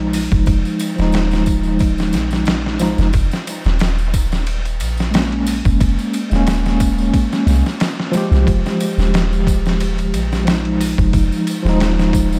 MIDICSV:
0, 0, Header, 1, 4, 480
1, 0, Start_track
1, 0, Key_signature, -4, "minor"
1, 0, Tempo, 666667
1, 336, Time_signature, 4, 2, 24, 8
1, 8922, End_track
2, 0, Start_track
2, 0, Title_t, "Tine electric piano"
2, 0, Program_c, 0, 4
2, 0, Note_on_c, 0, 53, 69
2, 0, Note_on_c, 0, 56, 62
2, 0, Note_on_c, 0, 63, 75
2, 667, Note_off_c, 0, 53, 0
2, 677, Note_off_c, 0, 56, 0
2, 687, Note_on_c, 0, 53, 81
2, 688, Note_off_c, 0, 63, 0
2, 710, Note_on_c, 0, 56, 75
2, 730, Note_on_c, 0, 63, 91
2, 1979, Note_off_c, 0, 53, 0
2, 1991, Note_off_c, 0, 56, 0
2, 2001, Note_off_c, 0, 63, 0
2, 2012, Note_on_c, 0, 53, 87
2, 2023, Note_on_c, 0, 56, 74
2, 2034, Note_on_c, 0, 63, 92
2, 2200, Note_off_c, 0, 53, 0
2, 2205, Note_off_c, 0, 56, 0
2, 2211, Note_off_c, 0, 63, 0
2, 3679, Note_on_c, 0, 56, 65
2, 3701, Note_on_c, 0, 58, 57
2, 3723, Note_on_c, 0, 61, 75
2, 4506, Note_off_c, 0, 56, 0
2, 4517, Note_off_c, 0, 58, 0
2, 4529, Note_off_c, 0, 61, 0
2, 4535, Note_on_c, 0, 56, 81
2, 4556, Note_on_c, 0, 58, 76
2, 4577, Note_on_c, 0, 61, 101
2, 5348, Note_off_c, 0, 56, 0
2, 5358, Note_off_c, 0, 58, 0
2, 5369, Note_off_c, 0, 61, 0
2, 5371, Note_on_c, 0, 56, 70
2, 5380, Note_on_c, 0, 58, 64
2, 5392, Note_on_c, 0, 61, 77
2, 5496, Note_off_c, 0, 56, 0
2, 5501, Note_off_c, 0, 58, 0
2, 5507, Note_off_c, 0, 61, 0
2, 5842, Note_on_c, 0, 53, 93
2, 5863, Note_on_c, 0, 56, 85
2, 5884, Note_on_c, 0, 67, 105
2, 7502, Note_off_c, 0, 53, 0
2, 7513, Note_off_c, 0, 56, 0
2, 7523, Note_off_c, 0, 67, 0
2, 7523, Note_on_c, 0, 53, 67
2, 7546, Note_on_c, 0, 56, 59
2, 7566, Note_on_c, 0, 63, 79
2, 8348, Note_off_c, 0, 53, 0
2, 8360, Note_off_c, 0, 56, 0
2, 8370, Note_off_c, 0, 63, 0
2, 8371, Note_on_c, 0, 53, 85
2, 8393, Note_on_c, 0, 56, 76
2, 8417, Note_on_c, 0, 63, 95
2, 8922, Note_off_c, 0, 53, 0
2, 8922, Note_off_c, 0, 56, 0
2, 8922, Note_off_c, 0, 63, 0
2, 8922, End_track
3, 0, Start_track
3, 0, Title_t, "808-style bass"
3, 0, Program_c, 1, 38
3, 0, Note_on_c, 1, 34, 79
3, 200, Note_off_c, 1, 34, 0
3, 228, Note_on_c, 1, 29, 90
3, 323, Note_off_c, 1, 29, 0
3, 338, Note_on_c, 1, 29, 97
3, 451, Note_off_c, 1, 29, 0
3, 710, Note_on_c, 1, 27, 89
3, 1538, Note_on_c, 1, 34, 74
3, 1549, Note_off_c, 1, 27, 0
3, 2122, Note_off_c, 1, 34, 0
3, 2146, Note_on_c, 1, 29, 97
3, 2242, Note_off_c, 1, 29, 0
3, 2257, Note_on_c, 1, 29, 98
3, 2371, Note_off_c, 1, 29, 0
3, 2630, Note_on_c, 1, 27, 86
3, 3458, Note_on_c, 1, 34, 79
3, 3469, Note_off_c, 1, 27, 0
3, 4042, Note_off_c, 1, 34, 0
3, 4070, Note_on_c, 1, 29, 96
3, 4164, Note_off_c, 1, 29, 0
3, 4180, Note_on_c, 1, 29, 100
3, 4292, Note_off_c, 1, 29, 0
3, 4546, Note_on_c, 1, 27, 92
3, 5114, Note_off_c, 1, 27, 0
3, 5373, Note_on_c, 1, 36, 83
3, 5489, Note_off_c, 1, 36, 0
3, 5983, Note_on_c, 1, 36, 82
3, 6081, Note_off_c, 1, 36, 0
3, 6098, Note_on_c, 1, 29, 98
3, 6211, Note_off_c, 1, 29, 0
3, 6462, Note_on_c, 1, 27, 92
3, 7294, Note_on_c, 1, 34, 79
3, 7305, Note_off_c, 1, 27, 0
3, 7880, Note_off_c, 1, 34, 0
3, 7906, Note_on_c, 1, 29, 92
3, 8002, Note_off_c, 1, 29, 0
3, 8018, Note_on_c, 1, 29, 95
3, 8131, Note_off_c, 1, 29, 0
3, 8386, Note_on_c, 1, 27, 92
3, 8922, Note_off_c, 1, 27, 0
3, 8922, End_track
4, 0, Start_track
4, 0, Title_t, "Drums"
4, 96, Note_on_c, 9, 54, 88
4, 101, Note_on_c, 9, 46, 77
4, 168, Note_off_c, 9, 54, 0
4, 173, Note_off_c, 9, 46, 0
4, 224, Note_on_c, 9, 54, 34
4, 229, Note_on_c, 9, 36, 88
4, 296, Note_off_c, 9, 54, 0
4, 301, Note_off_c, 9, 36, 0
4, 331, Note_on_c, 9, 54, 50
4, 338, Note_on_c, 9, 36, 99
4, 340, Note_on_c, 9, 51, 81
4, 403, Note_off_c, 9, 54, 0
4, 410, Note_off_c, 9, 36, 0
4, 412, Note_off_c, 9, 51, 0
4, 470, Note_on_c, 9, 54, 31
4, 542, Note_off_c, 9, 54, 0
4, 572, Note_on_c, 9, 54, 88
4, 580, Note_on_c, 9, 51, 61
4, 644, Note_off_c, 9, 54, 0
4, 652, Note_off_c, 9, 51, 0
4, 708, Note_on_c, 9, 54, 37
4, 717, Note_on_c, 9, 38, 49
4, 780, Note_off_c, 9, 54, 0
4, 789, Note_off_c, 9, 38, 0
4, 808, Note_on_c, 9, 54, 52
4, 819, Note_on_c, 9, 51, 88
4, 826, Note_on_c, 9, 38, 102
4, 880, Note_off_c, 9, 54, 0
4, 891, Note_off_c, 9, 51, 0
4, 898, Note_off_c, 9, 38, 0
4, 944, Note_on_c, 9, 54, 33
4, 959, Note_on_c, 9, 38, 50
4, 1016, Note_off_c, 9, 54, 0
4, 1031, Note_off_c, 9, 38, 0
4, 1051, Note_on_c, 9, 54, 78
4, 1059, Note_on_c, 9, 36, 85
4, 1062, Note_on_c, 9, 51, 58
4, 1123, Note_off_c, 9, 54, 0
4, 1131, Note_off_c, 9, 36, 0
4, 1134, Note_off_c, 9, 51, 0
4, 1176, Note_on_c, 9, 54, 35
4, 1248, Note_off_c, 9, 54, 0
4, 1290, Note_on_c, 9, 54, 44
4, 1299, Note_on_c, 9, 36, 98
4, 1300, Note_on_c, 9, 51, 82
4, 1362, Note_off_c, 9, 54, 0
4, 1371, Note_off_c, 9, 36, 0
4, 1372, Note_off_c, 9, 51, 0
4, 1425, Note_on_c, 9, 54, 33
4, 1439, Note_on_c, 9, 38, 47
4, 1497, Note_off_c, 9, 54, 0
4, 1511, Note_off_c, 9, 38, 0
4, 1531, Note_on_c, 9, 54, 78
4, 1539, Note_on_c, 9, 51, 59
4, 1547, Note_on_c, 9, 38, 41
4, 1603, Note_off_c, 9, 54, 0
4, 1611, Note_off_c, 9, 51, 0
4, 1619, Note_off_c, 9, 38, 0
4, 1661, Note_on_c, 9, 54, 36
4, 1677, Note_on_c, 9, 38, 48
4, 1733, Note_off_c, 9, 54, 0
4, 1749, Note_off_c, 9, 38, 0
4, 1767, Note_on_c, 9, 54, 47
4, 1777, Note_on_c, 9, 51, 85
4, 1784, Note_on_c, 9, 38, 110
4, 1839, Note_off_c, 9, 54, 0
4, 1849, Note_off_c, 9, 51, 0
4, 1856, Note_off_c, 9, 38, 0
4, 1918, Note_on_c, 9, 38, 51
4, 1990, Note_off_c, 9, 38, 0
4, 2012, Note_on_c, 9, 54, 87
4, 2020, Note_on_c, 9, 51, 64
4, 2027, Note_on_c, 9, 38, 49
4, 2084, Note_off_c, 9, 54, 0
4, 2092, Note_off_c, 9, 51, 0
4, 2099, Note_off_c, 9, 38, 0
4, 2147, Note_on_c, 9, 54, 40
4, 2157, Note_on_c, 9, 38, 45
4, 2219, Note_off_c, 9, 54, 0
4, 2229, Note_off_c, 9, 38, 0
4, 2252, Note_on_c, 9, 54, 49
4, 2258, Note_on_c, 9, 36, 99
4, 2258, Note_on_c, 9, 51, 76
4, 2324, Note_off_c, 9, 54, 0
4, 2330, Note_off_c, 9, 36, 0
4, 2330, Note_off_c, 9, 51, 0
4, 2385, Note_on_c, 9, 54, 37
4, 2400, Note_on_c, 9, 38, 50
4, 2457, Note_off_c, 9, 54, 0
4, 2472, Note_off_c, 9, 38, 0
4, 2500, Note_on_c, 9, 54, 88
4, 2501, Note_on_c, 9, 51, 63
4, 2572, Note_off_c, 9, 54, 0
4, 2573, Note_off_c, 9, 51, 0
4, 2622, Note_on_c, 9, 54, 38
4, 2638, Note_on_c, 9, 38, 50
4, 2694, Note_off_c, 9, 54, 0
4, 2710, Note_off_c, 9, 38, 0
4, 2730, Note_on_c, 9, 54, 51
4, 2738, Note_on_c, 9, 51, 80
4, 2745, Note_on_c, 9, 38, 112
4, 2802, Note_off_c, 9, 54, 0
4, 2810, Note_off_c, 9, 51, 0
4, 2817, Note_off_c, 9, 38, 0
4, 2869, Note_on_c, 9, 54, 33
4, 2941, Note_off_c, 9, 54, 0
4, 2978, Note_on_c, 9, 36, 85
4, 2979, Note_on_c, 9, 51, 65
4, 2979, Note_on_c, 9, 54, 96
4, 3050, Note_off_c, 9, 36, 0
4, 3051, Note_off_c, 9, 51, 0
4, 3051, Note_off_c, 9, 54, 0
4, 3109, Note_on_c, 9, 54, 34
4, 3115, Note_on_c, 9, 38, 44
4, 3181, Note_off_c, 9, 54, 0
4, 3187, Note_off_c, 9, 38, 0
4, 3214, Note_on_c, 9, 54, 46
4, 3217, Note_on_c, 9, 51, 84
4, 3286, Note_off_c, 9, 54, 0
4, 3289, Note_off_c, 9, 51, 0
4, 3350, Note_on_c, 9, 51, 40
4, 3351, Note_on_c, 9, 54, 36
4, 3422, Note_off_c, 9, 51, 0
4, 3423, Note_off_c, 9, 54, 0
4, 3455, Note_on_c, 9, 54, 84
4, 3461, Note_on_c, 9, 51, 63
4, 3527, Note_off_c, 9, 54, 0
4, 3533, Note_off_c, 9, 51, 0
4, 3581, Note_on_c, 9, 54, 38
4, 3601, Note_on_c, 9, 38, 47
4, 3653, Note_off_c, 9, 54, 0
4, 3673, Note_off_c, 9, 38, 0
4, 3697, Note_on_c, 9, 54, 50
4, 3701, Note_on_c, 9, 51, 84
4, 3708, Note_on_c, 9, 38, 113
4, 3769, Note_off_c, 9, 54, 0
4, 3773, Note_off_c, 9, 51, 0
4, 3780, Note_off_c, 9, 38, 0
4, 3833, Note_on_c, 9, 51, 38
4, 3905, Note_off_c, 9, 51, 0
4, 3935, Note_on_c, 9, 54, 101
4, 3942, Note_on_c, 9, 46, 74
4, 4007, Note_off_c, 9, 54, 0
4, 4014, Note_off_c, 9, 46, 0
4, 4068, Note_on_c, 9, 54, 37
4, 4070, Note_on_c, 9, 36, 91
4, 4140, Note_off_c, 9, 54, 0
4, 4142, Note_off_c, 9, 36, 0
4, 4178, Note_on_c, 9, 54, 57
4, 4179, Note_on_c, 9, 36, 97
4, 4183, Note_on_c, 9, 51, 79
4, 4250, Note_off_c, 9, 54, 0
4, 4251, Note_off_c, 9, 36, 0
4, 4255, Note_off_c, 9, 51, 0
4, 4310, Note_on_c, 9, 54, 40
4, 4382, Note_off_c, 9, 54, 0
4, 4417, Note_on_c, 9, 54, 83
4, 4421, Note_on_c, 9, 51, 68
4, 4489, Note_off_c, 9, 54, 0
4, 4493, Note_off_c, 9, 51, 0
4, 4545, Note_on_c, 9, 54, 40
4, 4558, Note_on_c, 9, 38, 46
4, 4617, Note_off_c, 9, 54, 0
4, 4630, Note_off_c, 9, 38, 0
4, 4656, Note_on_c, 9, 51, 82
4, 4657, Note_on_c, 9, 54, 57
4, 4663, Note_on_c, 9, 38, 108
4, 4728, Note_off_c, 9, 51, 0
4, 4729, Note_off_c, 9, 54, 0
4, 4735, Note_off_c, 9, 38, 0
4, 4792, Note_on_c, 9, 54, 37
4, 4796, Note_on_c, 9, 38, 51
4, 4864, Note_off_c, 9, 54, 0
4, 4868, Note_off_c, 9, 38, 0
4, 4897, Note_on_c, 9, 54, 90
4, 4898, Note_on_c, 9, 36, 87
4, 4900, Note_on_c, 9, 51, 63
4, 4969, Note_off_c, 9, 54, 0
4, 4970, Note_off_c, 9, 36, 0
4, 4972, Note_off_c, 9, 51, 0
4, 5028, Note_on_c, 9, 54, 38
4, 5100, Note_off_c, 9, 54, 0
4, 5137, Note_on_c, 9, 36, 103
4, 5137, Note_on_c, 9, 51, 79
4, 5139, Note_on_c, 9, 54, 49
4, 5209, Note_off_c, 9, 36, 0
4, 5209, Note_off_c, 9, 51, 0
4, 5211, Note_off_c, 9, 54, 0
4, 5274, Note_on_c, 9, 54, 33
4, 5276, Note_on_c, 9, 38, 46
4, 5346, Note_off_c, 9, 54, 0
4, 5348, Note_off_c, 9, 38, 0
4, 5379, Note_on_c, 9, 51, 62
4, 5385, Note_on_c, 9, 54, 89
4, 5386, Note_on_c, 9, 38, 38
4, 5451, Note_off_c, 9, 51, 0
4, 5457, Note_off_c, 9, 54, 0
4, 5458, Note_off_c, 9, 38, 0
4, 5515, Note_on_c, 9, 54, 39
4, 5518, Note_on_c, 9, 38, 47
4, 5587, Note_off_c, 9, 54, 0
4, 5590, Note_off_c, 9, 38, 0
4, 5616, Note_on_c, 9, 54, 51
4, 5617, Note_on_c, 9, 51, 85
4, 5624, Note_on_c, 9, 38, 112
4, 5688, Note_off_c, 9, 54, 0
4, 5689, Note_off_c, 9, 51, 0
4, 5696, Note_off_c, 9, 38, 0
4, 5757, Note_on_c, 9, 38, 48
4, 5829, Note_off_c, 9, 38, 0
4, 5855, Note_on_c, 9, 54, 81
4, 5860, Note_on_c, 9, 51, 64
4, 5867, Note_on_c, 9, 38, 48
4, 5927, Note_off_c, 9, 54, 0
4, 5932, Note_off_c, 9, 51, 0
4, 5939, Note_off_c, 9, 38, 0
4, 5991, Note_on_c, 9, 54, 35
4, 5999, Note_on_c, 9, 38, 44
4, 6063, Note_off_c, 9, 54, 0
4, 6071, Note_off_c, 9, 38, 0
4, 6098, Note_on_c, 9, 36, 101
4, 6101, Note_on_c, 9, 51, 77
4, 6103, Note_on_c, 9, 54, 49
4, 6170, Note_off_c, 9, 36, 0
4, 6173, Note_off_c, 9, 51, 0
4, 6175, Note_off_c, 9, 54, 0
4, 6234, Note_on_c, 9, 54, 32
4, 6238, Note_on_c, 9, 38, 51
4, 6306, Note_off_c, 9, 54, 0
4, 6310, Note_off_c, 9, 38, 0
4, 6338, Note_on_c, 9, 54, 86
4, 6341, Note_on_c, 9, 51, 68
4, 6410, Note_off_c, 9, 54, 0
4, 6413, Note_off_c, 9, 51, 0
4, 6468, Note_on_c, 9, 54, 38
4, 6477, Note_on_c, 9, 38, 53
4, 6540, Note_off_c, 9, 54, 0
4, 6549, Note_off_c, 9, 38, 0
4, 6580, Note_on_c, 9, 51, 78
4, 6584, Note_on_c, 9, 54, 48
4, 6587, Note_on_c, 9, 38, 116
4, 6652, Note_off_c, 9, 51, 0
4, 6656, Note_off_c, 9, 54, 0
4, 6659, Note_off_c, 9, 38, 0
4, 6715, Note_on_c, 9, 54, 38
4, 6787, Note_off_c, 9, 54, 0
4, 6817, Note_on_c, 9, 36, 84
4, 6820, Note_on_c, 9, 51, 60
4, 6826, Note_on_c, 9, 54, 80
4, 6889, Note_off_c, 9, 36, 0
4, 6892, Note_off_c, 9, 51, 0
4, 6898, Note_off_c, 9, 54, 0
4, 6951, Note_on_c, 9, 54, 36
4, 6959, Note_on_c, 9, 38, 42
4, 7023, Note_off_c, 9, 54, 0
4, 7031, Note_off_c, 9, 38, 0
4, 7057, Note_on_c, 9, 54, 49
4, 7060, Note_on_c, 9, 51, 83
4, 7129, Note_off_c, 9, 54, 0
4, 7132, Note_off_c, 9, 51, 0
4, 7187, Note_on_c, 9, 54, 32
4, 7190, Note_on_c, 9, 51, 40
4, 7259, Note_off_c, 9, 54, 0
4, 7262, Note_off_c, 9, 51, 0
4, 7299, Note_on_c, 9, 51, 63
4, 7299, Note_on_c, 9, 54, 80
4, 7371, Note_off_c, 9, 51, 0
4, 7371, Note_off_c, 9, 54, 0
4, 7433, Note_on_c, 9, 54, 35
4, 7435, Note_on_c, 9, 38, 46
4, 7505, Note_off_c, 9, 54, 0
4, 7507, Note_off_c, 9, 38, 0
4, 7538, Note_on_c, 9, 51, 80
4, 7540, Note_on_c, 9, 54, 47
4, 7545, Note_on_c, 9, 38, 117
4, 7610, Note_off_c, 9, 51, 0
4, 7612, Note_off_c, 9, 54, 0
4, 7617, Note_off_c, 9, 38, 0
4, 7669, Note_on_c, 9, 51, 40
4, 7741, Note_off_c, 9, 51, 0
4, 7780, Note_on_c, 9, 46, 76
4, 7783, Note_on_c, 9, 54, 97
4, 7852, Note_off_c, 9, 46, 0
4, 7855, Note_off_c, 9, 54, 0
4, 7907, Note_on_c, 9, 36, 92
4, 7912, Note_on_c, 9, 54, 34
4, 7979, Note_off_c, 9, 36, 0
4, 7984, Note_off_c, 9, 54, 0
4, 8015, Note_on_c, 9, 51, 80
4, 8016, Note_on_c, 9, 36, 101
4, 8022, Note_on_c, 9, 54, 44
4, 8087, Note_off_c, 9, 51, 0
4, 8088, Note_off_c, 9, 36, 0
4, 8094, Note_off_c, 9, 54, 0
4, 8151, Note_on_c, 9, 54, 38
4, 8223, Note_off_c, 9, 54, 0
4, 8258, Note_on_c, 9, 51, 68
4, 8260, Note_on_c, 9, 54, 90
4, 8330, Note_off_c, 9, 51, 0
4, 8332, Note_off_c, 9, 54, 0
4, 8396, Note_on_c, 9, 38, 49
4, 8396, Note_on_c, 9, 54, 33
4, 8468, Note_off_c, 9, 38, 0
4, 8468, Note_off_c, 9, 54, 0
4, 8498, Note_on_c, 9, 51, 87
4, 8505, Note_on_c, 9, 54, 46
4, 8506, Note_on_c, 9, 38, 104
4, 8570, Note_off_c, 9, 51, 0
4, 8577, Note_off_c, 9, 54, 0
4, 8578, Note_off_c, 9, 38, 0
4, 8635, Note_on_c, 9, 38, 52
4, 8635, Note_on_c, 9, 54, 35
4, 8707, Note_off_c, 9, 38, 0
4, 8707, Note_off_c, 9, 54, 0
4, 8735, Note_on_c, 9, 51, 65
4, 8736, Note_on_c, 9, 36, 90
4, 8745, Note_on_c, 9, 54, 89
4, 8807, Note_off_c, 9, 51, 0
4, 8808, Note_off_c, 9, 36, 0
4, 8817, Note_off_c, 9, 54, 0
4, 8874, Note_on_c, 9, 54, 40
4, 8922, Note_off_c, 9, 54, 0
4, 8922, End_track
0, 0, End_of_file